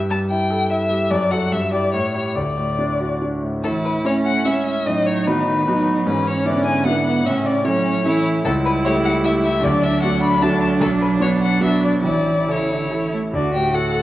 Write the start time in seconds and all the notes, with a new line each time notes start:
Already playing: G2
0.10 G3 A5
0.30 E4 G5
0.50 A4
0.70 E4 E5
0.90 G3
1.11 F#2 D5
1.31 F#4 A4 F#5
1.52 G2 E5
1.72 E4 G4 D5
1.94 A2 C#5
2.14 E4 G4 C#5
2.35 D2 D5
2.57 A2
2.79 D4
3.00 F#4
3.22 D4
3.43 A2
3.63 A2 E3 E4 A4
3.84 B4
4.04 A3 C#4 E4 C#5
4.25 F#5
4.45 G#3 C#4 E4 E5
4.65 E5
4.86 A2 F#3 D#4 D#5
5.06 C#5
5.27 D#3 B3 D#4 F#4 B4
5.47 D#3
5.67 F#3 B3 D#4 F#4
6.06 G#2 E3 C#4 B4
6.27 C#5
6.45 D3 B3 D4 E4 D5
6.65 G#5
6.85 B3 D4 E4 F#5
7.07 F#5
7.25 A2 C#3 C#4 E5
7.45 D5
7.64 F#3 A3 C#4 E4 C#5
8.05 E3 A3 C#4 E4
8.45 C#2 G3 E4 A4
8.65 B4
8.85 A3 E4 G4 C#5
9.05 F#5
9.24 A3 E4 G4 E5
9.43 E5
9.63 D2 F#3 D4 D5
9.83 E5
10.02 A3 D4 F#4 F#5
10.22 B5
10.42 A3 D4 F#4 A5
10.62 A5
10.81 B1 A4
11.01 B4
11.20 B3 D4 F#4 C#5
11.42 F#5
11.61 B3 D4 F#4 E5
11.85 D5
12.04 A1 E3 E4 D5
12.48 C#3 E4 A4 C#5
12.71 D3
12.91 E3 E4 A4
13.13 A3
13.33 D2 D4 F#4 D5
13.54 A2 G4 G5
13.74 F#4 A4 F#5
13.94 A4